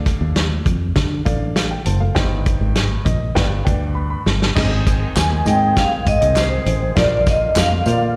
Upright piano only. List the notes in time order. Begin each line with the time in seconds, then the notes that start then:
Already playing: D3 D4 A4 F5
1.25 D4 A4 F5
1.56 A4 F5
1.71 G5
1.86 C5 A5
2.00 A4 F5
2.15 G2 D#4 C5 G5
3.05 D#5
3.35 G2 D4 B4 F5 G5
3.65 D4 B4 G5
3.95 B5
4.10 B5
4.55 G#2 C4 G#4 D#5
5.46 C4 G#4 D#5
6.21 C4 G#4 D#5
6.95 A#2 A#3 F4 D5
7.86 A#3 F4 C5
7.92 D5